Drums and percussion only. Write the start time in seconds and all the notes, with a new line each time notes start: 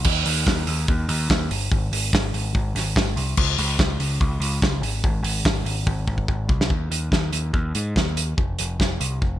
0.04 kick, crash
0.26 open hi-hat
0.47 kick, snare
0.67 open hi-hat
0.88 kick
1.09 open hi-hat
1.30 kick, snare
1.51 open hi-hat
1.72 kick
1.93 open hi-hat
2.13 kick, snare
2.34 open hi-hat
2.55 kick
2.76 snare, open hi-hat
2.96 kick, snare
3.17 open hi-hat
3.37 kick, crash
3.58 open hi-hat
3.79 kick, snare
4.00 open hi-hat
4.21 kick
4.42 open hi-hat
4.62 kick, snare
4.83 open hi-hat
5.04 kick
5.24 open hi-hat
5.45 kick, snare
5.66 open hi-hat
5.87 kick
6.08 kick
6.18 kick
6.28 kick
6.49 kick
6.61 snare
6.70 kick
6.92 closed hi-hat
7.12 kick, snare
7.33 closed hi-hat
7.54 kick
7.75 closed hi-hat
7.96 kick, snare
8.17 closed hi-hat
8.38 kick
8.59 closed hi-hat
8.80 kick, snare
9.01 closed hi-hat
9.22 kick